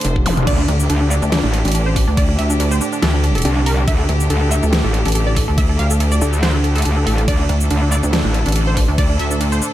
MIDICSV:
0, 0, Header, 1, 7, 480
1, 0, Start_track
1, 0, Tempo, 425532
1, 531, Time_signature, 4, 2, 24, 8
1, 10979, End_track
2, 0, Start_track
2, 0, Title_t, "Synth pluck"
2, 0, Program_c, 0, 84
2, 531, Note_on_c, 0, 74, 104
2, 637, Note_off_c, 0, 74, 0
2, 661, Note_on_c, 0, 62, 65
2, 751, Note_off_c, 0, 62, 0
2, 772, Note_on_c, 0, 62, 68
2, 877, Note_off_c, 0, 62, 0
2, 1011, Note_on_c, 0, 62, 66
2, 1117, Note_off_c, 0, 62, 0
2, 1140, Note_on_c, 0, 62, 63
2, 1231, Note_off_c, 0, 62, 0
2, 1251, Note_on_c, 0, 74, 97
2, 1357, Note_off_c, 0, 74, 0
2, 1382, Note_on_c, 0, 62, 61
2, 1471, Note_off_c, 0, 62, 0
2, 1491, Note_on_c, 0, 62, 65
2, 1597, Note_off_c, 0, 62, 0
2, 1620, Note_on_c, 0, 62, 65
2, 1710, Note_off_c, 0, 62, 0
2, 1861, Note_on_c, 0, 62, 65
2, 1951, Note_off_c, 0, 62, 0
2, 1970, Note_on_c, 0, 62, 64
2, 2076, Note_off_c, 0, 62, 0
2, 2100, Note_on_c, 0, 72, 94
2, 2191, Note_off_c, 0, 72, 0
2, 2211, Note_on_c, 0, 62, 69
2, 2317, Note_off_c, 0, 62, 0
2, 2340, Note_on_c, 0, 62, 71
2, 2431, Note_off_c, 0, 62, 0
2, 2450, Note_on_c, 0, 74, 92
2, 2557, Note_off_c, 0, 74, 0
2, 2580, Note_on_c, 0, 62, 62
2, 2670, Note_off_c, 0, 62, 0
2, 2690, Note_on_c, 0, 76, 98
2, 2797, Note_off_c, 0, 76, 0
2, 2819, Note_on_c, 0, 62, 64
2, 2910, Note_off_c, 0, 62, 0
2, 2931, Note_on_c, 0, 62, 65
2, 3037, Note_off_c, 0, 62, 0
2, 3060, Note_on_c, 0, 72, 92
2, 3151, Note_off_c, 0, 72, 0
2, 3171, Note_on_c, 0, 62, 66
2, 3277, Note_off_c, 0, 62, 0
2, 3300, Note_on_c, 0, 62, 64
2, 3391, Note_off_c, 0, 62, 0
2, 3410, Note_on_c, 0, 69, 93
2, 3517, Note_off_c, 0, 69, 0
2, 3540, Note_on_c, 0, 62, 63
2, 3631, Note_off_c, 0, 62, 0
2, 3651, Note_on_c, 0, 62, 64
2, 3757, Note_off_c, 0, 62, 0
2, 3781, Note_on_c, 0, 69, 95
2, 3871, Note_off_c, 0, 69, 0
2, 3891, Note_on_c, 0, 62, 62
2, 3997, Note_off_c, 0, 62, 0
2, 4021, Note_on_c, 0, 62, 67
2, 4111, Note_off_c, 0, 62, 0
2, 4130, Note_on_c, 0, 70, 95
2, 4237, Note_off_c, 0, 70, 0
2, 4261, Note_on_c, 0, 62, 68
2, 4351, Note_off_c, 0, 62, 0
2, 4371, Note_on_c, 0, 76, 99
2, 4477, Note_off_c, 0, 76, 0
2, 4502, Note_on_c, 0, 69, 60
2, 4592, Note_off_c, 0, 69, 0
2, 4613, Note_on_c, 0, 69, 65
2, 4718, Note_off_c, 0, 69, 0
2, 4852, Note_on_c, 0, 69, 66
2, 4958, Note_off_c, 0, 69, 0
2, 4982, Note_on_c, 0, 69, 59
2, 5071, Note_off_c, 0, 69, 0
2, 5092, Note_on_c, 0, 76, 101
2, 5197, Note_off_c, 0, 76, 0
2, 5221, Note_on_c, 0, 69, 66
2, 5311, Note_off_c, 0, 69, 0
2, 5332, Note_on_c, 0, 69, 66
2, 5438, Note_off_c, 0, 69, 0
2, 5461, Note_on_c, 0, 69, 64
2, 5551, Note_off_c, 0, 69, 0
2, 5702, Note_on_c, 0, 69, 70
2, 5792, Note_off_c, 0, 69, 0
2, 5812, Note_on_c, 0, 69, 64
2, 5917, Note_off_c, 0, 69, 0
2, 5942, Note_on_c, 0, 74, 94
2, 6031, Note_off_c, 0, 74, 0
2, 6052, Note_on_c, 0, 69, 66
2, 6158, Note_off_c, 0, 69, 0
2, 6182, Note_on_c, 0, 69, 73
2, 6271, Note_off_c, 0, 69, 0
2, 6292, Note_on_c, 0, 76, 95
2, 6397, Note_off_c, 0, 76, 0
2, 6422, Note_on_c, 0, 69, 65
2, 6512, Note_off_c, 0, 69, 0
2, 6532, Note_on_c, 0, 77, 104
2, 6638, Note_off_c, 0, 77, 0
2, 6662, Note_on_c, 0, 69, 61
2, 6752, Note_off_c, 0, 69, 0
2, 6772, Note_on_c, 0, 69, 65
2, 6878, Note_off_c, 0, 69, 0
2, 6901, Note_on_c, 0, 74, 94
2, 6991, Note_off_c, 0, 74, 0
2, 7011, Note_on_c, 0, 69, 69
2, 7117, Note_off_c, 0, 69, 0
2, 7141, Note_on_c, 0, 69, 61
2, 7231, Note_off_c, 0, 69, 0
2, 7250, Note_on_c, 0, 72, 93
2, 7356, Note_off_c, 0, 72, 0
2, 7381, Note_on_c, 0, 69, 61
2, 7471, Note_off_c, 0, 69, 0
2, 7490, Note_on_c, 0, 69, 66
2, 7597, Note_off_c, 0, 69, 0
2, 7621, Note_on_c, 0, 69, 94
2, 7711, Note_off_c, 0, 69, 0
2, 7731, Note_on_c, 0, 69, 64
2, 7837, Note_off_c, 0, 69, 0
2, 7861, Note_on_c, 0, 69, 63
2, 7951, Note_off_c, 0, 69, 0
2, 7971, Note_on_c, 0, 69, 91
2, 8077, Note_off_c, 0, 69, 0
2, 8101, Note_on_c, 0, 69, 69
2, 8191, Note_off_c, 0, 69, 0
2, 8212, Note_on_c, 0, 74, 104
2, 8318, Note_off_c, 0, 74, 0
2, 8341, Note_on_c, 0, 62, 65
2, 8431, Note_off_c, 0, 62, 0
2, 8451, Note_on_c, 0, 62, 66
2, 8557, Note_off_c, 0, 62, 0
2, 8692, Note_on_c, 0, 62, 64
2, 8797, Note_off_c, 0, 62, 0
2, 8821, Note_on_c, 0, 62, 64
2, 8911, Note_off_c, 0, 62, 0
2, 8931, Note_on_c, 0, 74, 99
2, 9037, Note_off_c, 0, 74, 0
2, 9061, Note_on_c, 0, 62, 62
2, 9151, Note_off_c, 0, 62, 0
2, 9172, Note_on_c, 0, 62, 63
2, 9278, Note_off_c, 0, 62, 0
2, 9302, Note_on_c, 0, 62, 63
2, 9392, Note_off_c, 0, 62, 0
2, 9542, Note_on_c, 0, 62, 65
2, 9631, Note_off_c, 0, 62, 0
2, 9651, Note_on_c, 0, 62, 66
2, 9757, Note_off_c, 0, 62, 0
2, 9782, Note_on_c, 0, 72, 94
2, 9871, Note_off_c, 0, 72, 0
2, 9891, Note_on_c, 0, 62, 63
2, 9997, Note_off_c, 0, 62, 0
2, 10020, Note_on_c, 0, 62, 69
2, 10111, Note_off_c, 0, 62, 0
2, 10130, Note_on_c, 0, 74, 94
2, 10237, Note_off_c, 0, 74, 0
2, 10260, Note_on_c, 0, 62, 66
2, 10351, Note_off_c, 0, 62, 0
2, 10371, Note_on_c, 0, 76, 99
2, 10477, Note_off_c, 0, 76, 0
2, 10501, Note_on_c, 0, 62, 62
2, 10591, Note_off_c, 0, 62, 0
2, 10612, Note_on_c, 0, 62, 64
2, 10718, Note_off_c, 0, 62, 0
2, 10741, Note_on_c, 0, 72, 87
2, 10831, Note_off_c, 0, 72, 0
2, 10851, Note_on_c, 0, 62, 68
2, 10957, Note_off_c, 0, 62, 0
2, 10979, End_track
3, 0, Start_track
3, 0, Title_t, "String section"
3, 0, Program_c, 1, 48
3, 0, Note_on_c, 1, 45, 78
3, 0, Note_on_c, 1, 50, 71
3, 0, Note_on_c, 1, 62, 71
3, 0, Note_on_c, 1, 72, 87
3, 511, Note_off_c, 1, 72, 0
3, 531, Note_on_c, 1, 67, 86
3, 8192, Note_off_c, 1, 67, 0
3, 8211, Note_on_c, 1, 69, 88
3, 10979, Note_off_c, 1, 45, 0
3, 10979, Note_off_c, 1, 50, 0
3, 10979, Note_off_c, 1, 62, 0
3, 10979, Note_off_c, 1, 69, 0
3, 10979, End_track
4, 0, Start_track
4, 0, Title_t, "Wobble bass"
4, 0, Program_c, 2, 39
4, 50, Note_on_c, 2, 29, 108
4, 273, Note_off_c, 2, 29, 0
4, 770, Note_on_c, 2, 38, 96
4, 993, Note_off_c, 2, 38, 0
4, 1380, Note_on_c, 2, 38, 95
4, 1600, Note_off_c, 2, 38, 0
4, 1861, Note_on_c, 2, 33, 95
4, 2320, Note_off_c, 2, 33, 0
4, 2340, Note_on_c, 2, 38, 104
4, 2673, Note_off_c, 2, 38, 0
4, 2691, Note_on_c, 2, 38, 98
4, 3154, Note_off_c, 2, 38, 0
4, 3412, Note_on_c, 2, 38, 101
4, 3874, Note_off_c, 2, 38, 0
4, 4611, Note_on_c, 2, 38, 95
4, 4833, Note_off_c, 2, 38, 0
4, 5221, Note_on_c, 2, 38, 99
4, 5440, Note_off_c, 2, 38, 0
4, 5701, Note_on_c, 2, 33, 97
4, 6160, Note_off_c, 2, 33, 0
4, 6181, Note_on_c, 2, 38, 94
4, 6514, Note_off_c, 2, 38, 0
4, 6531, Note_on_c, 2, 38, 94
4, 6993, Note_off_c, 2, 38, 0
4, 8451, Note_on_c, 2, 38, 97
4, 8674, Note_off_c, 2, 38, 0
4, 9060, Note_on_c, 2, 38, 93
4, 9280, Note_off_c, 2, 38, 0
4, 9540, Note_on_c, 2, 33, 99
4, 10000, Note_off_c, 2, 33, 0
4, 10021, Note_on_c, 2, 38, 105
4, 10354, Note_off_c, 2, 38, 0
4, 10370, Note_on_c, 2, 38, 97
4, 10833, Note_off_c, 2, 38, 0
4, 10979, End_track
5, 0, Start_track
5, 0, Title_t, "Wobble bass"
5, 0, Program_c, 3, 39
5, 292, Note_on_c, 3, 28, 97
5, 514, Note_off_c, 3, 28, 0
5, 531, Note_on_c, 3, 38, 101
5, 754, Note_off_c, 3, 38, 0
5, 1012, Note_on_c, 3, 38, 96
5, 1360, Note_off_c, 3, 38, 0
5, 1621, Note_on_c, 3, 33, 97
5, 1840, Note_off_c, 3, 33, 0
5, 3892, Note_on_c, 3, 36, 97
5, 4354, Note_off_c, 3, 36, 0
5, 4372, Note_on_c, 3, 38, 103
5, 4594, Note_off_c, 3, 38, 0
5, 4852, Note_on_c, 3, 38, 97
5, 5201, Note_off_c, 3, 38, 0
5, 5462, Note_on_c, 3, 33, 102
5, 5681, Note_off_c, 3, 33, 0
5, 7013, Note_on_c, 3, 38, 99
5, 7714, Note_off_c, 3, 38, 0
5, 7731, Note_on_c, 3, 38, 99
5, 7954, Note_off_c, 3, 38, 0
5, 7971, Note_on_c, 3, 33, 97
5, 8194, Note_off_c, 3, 33, 0
5, 8212, Note_on_c, 3, 38, 97
5, 8434, Note_off_c, 3, 38, 0
5, 8692, Note_on_c, 3, 38, 92
5, 9041, Note_off_c, 3, 38, 0
5, 9300, Note_on_c, 3, 33, 100
5, 9520, Note_off_c, 3, 33, 0
5, 10979, End_track
6, 0, Start_track
6, 0, Title_t, "Zap"
6, 0, Program_c, 4, 103
6, 291, Note_on_c, 4, 60, 65
6, 421, Note_off_c, 4, 60, 0
6, 10979, End_track
7, 0, Start_track
7, 0, Title_t, "Drums"
7, 15, Note_on_c, 9, 42, 82
7, 52, Note_off_c, 9, 42, 0
7, 52, Note_on_c, 9, 42, 79
7, 164, Note_off_c, 9, 42, 0
7, 181, Note_on_c, 9, 36, 61
7, 291, Note_on_c, 9, 46, 102
7, 291, Note_on_c, 9, 48, 64
7, 294, Note_off_c, 9, 36, 0
7, 404, Note_off_c, 9, 46, 0
7, 404, Note_off_c, 9, 48, 0
7, 421, Note_on_c, 9, 42, 40
7, 421, Note_on_c, 9, 47, 71
7, 531, Note_on_c, 9, 36, 116
7, 532, Note_off_c, 9, 42, 0
7, 532, Note_on_c, 9, 42, 81
7, 532, Note_on_c, 9, 49, 73
7, 532, Note_on_c, 9, 57, 62
7, 534, Note_off_c, 9, 47, 0
7, 644, Note_off_c, 9, 36, 0
7, 645, Note_off_c, 9, 42, 0
7, 645, Note_off_c, 9, 49, 0
7, 645, Note_off_c, 9, 57, 0
7, 771, Note_on_c, 9, 42, 53
7, 884, Note_off_c, 9, 42, 0
7, 901, Note_on_c, 9, 82, 80
7, 1011, Note_on_c, 9, 42, 84
7, 1011, Note_on_c, 9, 57, 45
7, 1014, Note_off_c, 9, 82, 0
7, 1124, Note_off_c, 9, 42, 0
7, 1124, Note_off_c, 9, 57, 0
7, 1251, Note_on_c, 9, 82, 73
7, 1364, Note_off_c, 9, 82, 0
7, 1381, Note_on_c, 9, 82, 49
7, 1491, Note_on_c, 9, 38, 116
7, 1491, Note_on_c, 9, 42, 80
7, 1491, Note_on_c, 9, 57, 66
7, 1494, Note_off_c, 9, 82, 0
7, 1604, Note_off_c, 9, 38, 0
7, 1604, Note_off_c, 9, 42, 0
7, 1604, Note_off_c, 9, 57, 0
7, 1732, Note_on_c, 9, 42, 56
7, 1845, Note_off_c, 9, 42, 0
7, 1862, Note_on_c, 9, 42, 53
7, 1892, Note_off_c, 9, 42, 0
7, 1892, Note_on_c, 9, 42, 67
7, 1935, Note_off_c, 9, 42, 0
7, 1935, Note_on_c, 9, 42, 83
7, 1972, Note_off_c, 9, 42, 0
7, 1972, Note_on_c, 9, 42, 84
7, 1972, Note_on_c, 9, 57, 45
7, 2085, Note_off_c, 9, 42, 0
7, 2085, Note_off_c, 9, 57, 0
7, 2212, Note_on_c, 9, 36, 61
7, 2212, Note_on_c, 9, 46, 98
7, 2325, Note_off_c, 9, 36, 0
7, 2325, Note_off_c, 9, 46, 0
7, 2452, Note_on_c, 9, 36, 121
7, 2452, Note_on_c, 9, 42, 84
7, 2452, Note_on_c, 9, 57, 62
7, 2565, Note_off_c, 9, 36, 0
7, 2565, Note_off_c, 9, 42, 0
7, 2565, Note_off_c, 9, 57, 0
7, 2692, Note_on_c, 9, 42, 55
7, 2805, Note_off_c, 9, 42, 0
7, 2821, Note_on_c, 9, 82, 79
7, 2932, Note_on_c, 9, 42, 85
7, 2932, Note_on_c, 9, 57, 46
7, 2934, Note_off_c, 9, 82, 0
7, 3045, Note_off_c, 9, 42, 0
7, 3045, Note_off_c, 9, 57, 0
7, 3062, Note_on_c, 9, 82, 58
7, 3172, Note_off_c, 9, 82, 0
7, 3172, Note_on_c, 9, 82, 75
7, 3285, Note_off_c, 9, 82, 0
7, 3302, Note_on_c, 9, 82, 50
7, 3412, Note_on_c, 9, 38, 127
7, 3412, Note_on_c, 9, 42, 84
7, 3412, Note_on_c, 9, 57, 62
7, 3415, Note_off_c, 9, 82, 0
7, 3525, Note_off_c, 9, 38, 0
7, 3525, Note_off_c, 9, 42, 0
7, 3525, Note_off_c, 9, 57, 0
7, 3652, Note_on_c, 9, 42, 56
7, 3765, Note_off_c, 9, 42, 0
7, 3781, Note_on_c, 9, 42, 52
7, 3812, Note_off_c, 9, 42, 0
7, 3812, Note_on_c, 9, 42, 65
7, 3855, Note_off_c, 9, 42, 0
7, 3855, Note_on_c, 9, 42, 89
7, 3892, Note_off_c, 9, 42, 0
7, 3892, Note_on_c, 9, 42, 84
7, 3892, Note_on_c, 9, 57, 44
7, 4005, Note_off_c, 9, 42, 0
7, 4005, Note_off_c, 9, 57, 0
7, 4132, Note_on_c, 9, 46, 94
7, 4245, Note_off_c, 9, 46, 0
7, 4372, Note_on_c, 9, 36, 121
7, 4372, Note_on_c, 9, 42, 82
7, 4372, Note_on_c, 9, 57, 58
7, 4485, Note_off_c, 9, 36, 0
7, 4485, Note_off_c, 9, 42, 0
7, 4485, Note_off_c, 9, 57, 0
7, 4612, Note_on_c, 9, 42, 55
7, 4725, Note_off_c, 9, 42, 0
7, 4742, Note_on_c, 9, 82, 82
7, 4852, Note_on_c, 9, 42, 81
7, 4852, Note_on_c, 9, 57, 44
7, 4854, Note_off_c, 9, 82, 0
7, 4964, Note_off_c, 9, 42, 0
7, 4964, Note_off_c, 9, 57, 0
7, 5092, Note_on_c, 9, 82, 80
7, 5205, Note_off_c, 9, 82, 0
7, 5222, Note_on_c, 9, 82, 54
7, 5332, Note_on_c, 9, 38, 127
7, 5332, Note_on_c, 9, 42, 85
7, 5332, Note_on_c, 9, 57, 59
7, 5335, Note_off_c, 9, 82, 0
7, 5445, Note_off_c, 9, 38, 0
7, 5445, Note_off_c, 9, 42, 0
7, 5445, Note_off_c, 9, 57, 0
7, 5572, Note_on_c, 9, 42, 53
7, 5685, Note_off_c, 9, 42, 0
7, 5702, Note_on_c, 9, 42, 53
7, 5732, Note_off_c, 9, 42, 0
7, 5732, Note_on_c, 9, 42, 70
7, 5775, Note_off_c, 9, 42, 0
7, 5775, Note_on_c, 9, 42, 83
7, 5812, Note_off_c, 9, 42, 0
7, 5812, Note_on_c, 9, 42, 87
7, 5812, Note_on_c, 9, 57, 44
7, 5925, Note_off_c, 9, 42, 0
7, 5925, Note_off_c, 9, 57, 0
7, 6051, Note_on_c, 9, 46, 98
7, 6052, Note_on_c, 9, 36, 69
7, 6164, Note_off_c, 9, 46, 0
7, 6165, Note_off_c, 9, 36, 0
7, 6291, Note_on_c, 9, 42, 78
7, 6291, Note_on_c, 9, 57, 61
7, 6292, Note_on_c, 9, 36, 121
7, 6404, Note_off_c, 9, 42, 0
7, 6404, Note_off_c, 9, 57, 0
7, 6405, Note_off_c, 9, 36, 0
7, 6531, Note_on_c, 9, 42, 51
7, 6644, Note_off_c, 9, 42, 0
7, 6661, Note_on_c, 9, 82, 82
7, 6771, Note_on_c, 9, 42, 81
7, 6771, Note_on_c, 9, 57, 44
7, 6774, Note_off_c, 9, 82, 0
7, 6884, Note_off_c, 9, 42, 0
7, 6884, Note_off_c, 9, 57, 0
7, 6901, Note_on_c, 9, 82, 63
7, 7011, Note_off_c, 9, 82, 0
7, 7011, Note_on_c, 9, 82, 81
7, 7124, Note_off_c, 9, 82, 0
7, 7141, Note_on_c, 9, 82, 54
7, 7251, Note_on_c, 9, 38, 123
7, 7251, Note_on_c, 9, 42, 76
7, 7251, Note_on_c, 9, 57, 61
7, 7254, Note_off_c, 9, 82, 0
7, 7364, Note_off_c, 9, 38, 0
7, 7364, Note_off_c, 9, 42, 0
7, 7364, Note_off_c, 9, 57, 0
7, 7491, Note_on_c, 9, 42, 49
7, 7604, Note_off_c, 9, 42, 0
7, 7621, Note_on_c, 9, 42, 47
7, 7651, Note_off_c, 9, 42, 0
7, 7651, Note_on_c, 9, 42, 63
7, 7694, Note_off_c, 9, 42, 0
7, 7694, Note_on_c, 9, 42, 80
7, 7732, Note_off_c, 9, 42, 0
7, 7732, Note_on_c, 9, 42, 80
7, 7732, Note_on_c, 9, 57, 46
7, 7844, Note_off_c, 9, 42, 0
7, 7844, Note_off_c, 9, 57, 0
7, 7971, Note_on_c, 9, 46, 89
7, 8084, Note_off_c, 9, 46, 0
7, 8101, Note_on_c, 9, 42, 37
7, 8211, Note_off_c, 9, 42, 0
7, 8211, Note_on_c, 9, 42, 77
7, 8211, Note_on_c, 9, 57, 65
7, 8212, Note_on_c, 9, 36, 116
7, 8324, Note_off_c, 9, 42, 0
7, 8324, Note_off_c, 9, 57, 0
7, 8325, Note_off_c, 9, 36, 0
7, 8451, Note_on_c, 9, 42, 52
7, 8564, Note_off_c, 9, 42, 0
7, 8581, Note_on_c, 9, 82, 89
7, 8692, Note_on_c, 9, 42, 77
7, 8692, Note_on_c, 9, 57, 46
7, 8694, Note_off_c, 9, 82, 0
7, 8804, Note_off_c, 9, 42, 0
7, 8804, Note_off_c, 9, 57, 0
7, 8931, Note_on_c, 9, 82, 82
7, 9044, Note_off_c, 9, 82, 0
7, 9061, Note_on_c, 9, 82, 55
7, 9172, Note_on_c, 9, 38, 124
7, 9172, Note_on_c, 9, 42, 77
7, 9172, Note_on_c, 9, 57, 63
7, 9174, Note_off_c, 9, 82, 0
7, 9284, Note_off_c, 9, 38, 0
7, 9284, Note_off_c, 9, 42, 0
7, 9284, Note_off_c, 9, 57, 0
7, 9411, Note_on_c, 9, 42, 51
7, 9524, Note_off_c, 9, 42, 0
7, 9541, Note_on_c, 9, 42, 46
7, 9571, Note_off_c, 9, 42, 0
7, 9571, Note_on_c, 9, 42, 62
7, 9614, Note_off_c, 9, 42, 0
7, 9614, Note_on_c, 9, 42, 81
7, 9652, Note_off_c, 9, 42, 0
7, 9652, Note_on_c, 9, 42, 77
7, 9652, Note_on_c, 9, 57, 47
7, 9764, Note_off_c, 9, 42, 0
7, 9764, Note_off_c, 9, 57, 0
7, 9891, Note_on_c, 9, 36, 62
7, 9891, Note_on_c, 9, 46, 94
7, 10004, Note_off_c, 9, 36, 0
7, 10004, Note_off_c, 9, 46, 0
7, 10131, Note_on_c, 9, 36, 111
7, 10131, Note_on_c, 9, 42, 77
7, 10131, Note_on_c, 9, 57, 64
7, 10244, Note_off_c, 9, 36, 0
7, 10244, Note_off_c, 9, 42, 0
7, 10244, Note_off_c, 9, 57, 0
7, 10372, Note_on_c, 9, 42, 50
7, 10484, Note_off_c, 9, 42, 0
7, 10501, Note_on_c, 9, 82, 89
7, 10611, Note_on_c, 9, 42, 78
7, 10611, Note_on_c, 9, 57, 48
7, 10614, Note_off_c, 9, 82, 0
7, 10724, Note_off_c, 9, 42, 0
7, 10724, Note_off_c, 9, 57, 0
7, 10741, Note_on_c, 9, 82, 61
7, 10851, Note_off_c, 9, 82, 0
7, 10851, Note_on_c, 9, 82, 83
7, 10964, Note_off_c, 9, 82, 0
7, 10979, End_track
0, 0, End_of_file